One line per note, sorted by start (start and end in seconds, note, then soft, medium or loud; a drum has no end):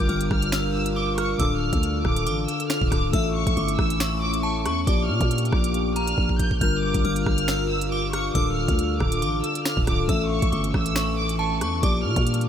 0.00 1.35 G3 medium
0.00 1.38 G3 medium
0.00 1.36 D4 medium
0.00 1.38 D4 medium
0.00 1.36 F4 medium
0.00 3.10 F4 medium
0.00 1.37 A#4 medium
0.00 1.38 A#4 medium
0.00 0.28 D6 medium
0.00 impact medium
0.09 0.30 G1 loud
0.09 0.50 F6 medium
0.09 closed hi-hat soft
0.21 closed hi-hat medium
0.31 1.36 G1 loud
0.31 0.72 F6 medium
0.31 kick loud
0.31 cross-stick loud
0.42 closed hi-hat medium
0.52 0.93 E6 medium
0.52 finger snap medium
0.52 snare loud
0.74 0.93 E6 medium
0.86 closed hi-hat medium
0.96 1.17 D6 medium
0.96 1.15 D6 medium
1.18 1.37 C#6 medium
1.18 1.39 F6 medium
1.18 cross-stick medium
1.18 closed hi-hat medium
1.38 1.72 D1 loud
1.38 2.88 D3 medium
1.38 3.12 D3 medium
1.38 2.88 D4 medium
1.38 3.12 D4 medium
1.38 2.89 F4 medium
1.38 3.12 A4 medium
1.38 2.89 A4 medium
1.38 1.59 D6 loud
1.38 2.23 E6 loud
1.38 kick loud
1.38 closed hi-hat medium
1.61 2.02 F6 medium
1.73 2.04 D2 loud
1.73 kick loud
1.73 closed hi-hat medium
1.83 closed hi-hat medium
2.05 2.28 D1 loud
2.05 2.46 D6 medium
2.05 kick loud
2.05 cross-stick medium
2.16 closed hi-hat medium
2.27 2.47 A1 loud
2.27 2.67 D6 medium
2.27 closed hi-hat medium
2.48 2.67 E6 medium
2.48 closed hi-hat medium
2.60 closed hi-hat medium
2.70 2.89 F6 medium
2.70 finger snap medium
2.70 snare loud
2.81 2.91 D1 loud
2.81 kick loud
2.91 3.13 C#1 loud
2.91 3.13 D3 medium
2.91 3.13 D4 soft
2.91 3.14 F4 soft
2.91 3.11 A4 medium
2.91 3.11 D6 medium
2.91 kick loud
2.91 cross-stick medium
2.91 closed hi-hat medium
3.12 3.45 A1 loud
3.12 4.83 A3 medium
3.12 4.86 A3 medium
3.12 4.86 C#4 medium
3.12 4.84 C#4 medium
3.12 4.86 E4 medium
3.12 4.83 A4 medium
3.12 4.84 E5 medium
3.12 3.33 E6 medium
3.12 3.54 E6 loud
3.12 kick loud
3.12 closed hi-hat medium
3.35 3.76 C#6 loud
3.47 3.56 A1 loud
3.47 kick loud
3.47 closed hi-hat medium
3.57 3.78 G1 loud
3.57 3.98 D6 medium
3.57 closed hi-hat soft
3.68 closed hi-hat medium
3.79 4.67 A1 loud
3.79 4.19 E6 medium
3.79 kick loud
3.79 cross-stick loud
3.90 closed hi-hat medium
4.00 4.41 C#6 medium
4.00 finger snap medium
4.00 snare loud
4.22 4.42 D6 medium
4.34 closed hi-hat medium
4.43 4.64 A5 loud
4.43 4.63 C#6 medium
4.66 4.86 E2 loud
4.66 4.85 C#6 medium
4.66 4.86 C#6 medium
4.66 cross-stick medium
4.66 closed hi-hat medium
4.86 5.11 A#1 loud
4.86 6.57 A#3 medium
4.86 6.60 A#3 medium
4.86 10.05 D4 medium
4.86 6.57 F4 medium
4.86 6.60 G4 medium
4.86 6.58 G4 medium
4.86 6.58 D5 medium
4.86 5.06 D6 loud
4.86 5.92 D6 loud
4.86 kick loud
4.86 closed hi-hat loud
5.09 5.20 A#2 loud
5.09 5.50 F6 medium
5.21 5.51 A#2 loud
5.21 kick loud
5.21 closed hi-hat medium
5.31 closed hi-hat medium
5.38 closed hi-hat medium
5.45 closed hi-hat soft
5.52 6.15 A#1 loud
5.52 5.93 D6 medium
5.52 kick loud
5.52 cross-stick loud
5.64 closed hi-hat medium
5.74 closed hi-hat medium
5.96 6.17 A#5 medium
5.96 6.37 F6 medium
5.96 closed hi-hat medium
6.08 closed hi-hat medium
6.18 6.60 A#1 loud
6.18 kick medium
6.29 kick medium
6.39 6.59 G6 medium
6.39 kick loud
6.39 closed hi-hat medium
6.51 kick loud
6.60 6.93 G1 loud
6.60 8.31 G3 medium
6.60 8.34 G3 medium
6.60 8.31 D4 medium
6.60 10.06 F4 medium
6.60 8.32 F4 medium
6.60 8.33 A#4 medium
6.60 8.32 A#4 medium
6.60 6.80 F6 loud
6.60 7.02 G6 loud
6.60 kick loud
6.60 closed hi-hat medium
6.83 7.24 D6 medium
6.94 7.04 G1 loud
6.94 kick loud
6.94 closed hi-hat medium
7.05 7.26 G1 loud
7.05 7.46 F6 medium
7.05 closed hi-hat soft
7.16 closed hi-hat medium
7.26 8.31 G1 loud
7.26 7.67 F6 medium
7.26 kick loud
7.26 cross-stick loud
7.38 closed hi-hat medium
7.48 7.89 E6 medium
7.48 finger snap medium
7.48 snare loud
7.70 7.89 E6 medium
7.81 closed hi-hat medium
7.92 8.11 D6 medium
7.92 8.13 D6 medium
8.13 8.33 C#6 medium
8.13 8.34 F6 medium
8.13 cross-stick medium
8.13 closed hi-hat medium
8.34 8.67 D1 loud
8.34 9.83 D3 medium
8.34 10.07 D3 medium
8.34 9.84 D4 medium
8.34 9.84 F4 medium
8.34 10.07 A4 medium
8.34 9.85 A4 medium
8.34 8.54 D6 loud
8.34 9.18 E6 loud
8.34 kick loud
8.34 closed hi-hat medium
8.57 8.98 F6 medium
8.68 8.99 D2 loud
8.68 kick loud
8.68 closed hi-hat medium
8.79 closed hi-hat medium
9.00 9.24 D1 loud
9.00 9.41 D6 medium
9.00 kick loud
9.00 cross-stick loud
9.12 closed hi-hat medium
9.22 9.43 A1 medium
9.22 9.63 D6 medium
9.22 closed hi-hat medium
9.44 9.63 E6 medium
9.44 closed hi-hat medium
9.55 closed hi-hat medium
9.65 9.85 F6 medium
9.65 finger snap medium
9.65 snare loud
9.77 9.87 D1 loud
9.77 kick loud
9.87 10.08 C#1 loud
9.87 10.09 D3 medium
9.87 10.09 D4 soft
9.87 10.09 F4 medium
9.87 10.07 A4 medium
9.87 10.07 D6 medium
9.87 kick loud
9.87 cross-stick medium
9.87 closed hi-hat medium
10.07 10.41 A1 loud
10.07 11.81 E3 medium
10.07 11.79 A3 medium
10.07 11.81 A3 medium
10.07 11.81 C#4 medium
10.07 11.80 C#4 medium
10.07 11.79 A4 medium
10.07 11.80 E5 medium
10.07 10.50 E6 loud
10.07 10.28 E6 medium
10.07 kick loud
10.07 closed hi-hat medium
10.31 10.72 C#6 medium
10.42 10.52 A1 loud
10.42 kick loud
10.42 closed hi-hat medium
10.52 10.73 G1 loud
10.52 10.93 D6 medium
10.52 closed hi-hat soft
10.64 closed hi-hat medium
10.74 11.63 A1 loud
10.74 11.15 E6 medium
10.74 kick loud
10.74 cross-stick loud
10.86 closed hi-hat medium
10.96 11.37 C#6 medium
10.96 finger snap medium
10.96 snare loud
11.18 11.37 D6 medium
11.29 closed hi-hat medium
11.39 11.60 A5 loud
11.39 11.59 C#6 medium
11.61 11.82 E2 loud
11.61 11.80 C#6 medium
11.61 11.82 C#6 medium
11.61 cross-stick medium
11.61 closed hi-hat medium
11.81 12.06 A#1 loud
11.81 12.49 G3 medium
11.81 12.49 A#3 medium
11.81 12.49 D4 medium
11.81 12.49 F4 medium
11.81 12.49 G4 medium
11.81 12.49 D5 medium
11.81 12.02 D6 loud
11.81 12.49 D6 loud
11.81 kick loud
11.81 closed hi-hat loud
12.05 12.16 A#2 loud
12.05 12.46 F6 medium
12.16 12.47 A#2 loud
12.16 kick loud
12.16 closed hi-hat medium
12.27 closed hi-hat medium
12.34 closed hi-hat medium
12.41 closed hi-hat soft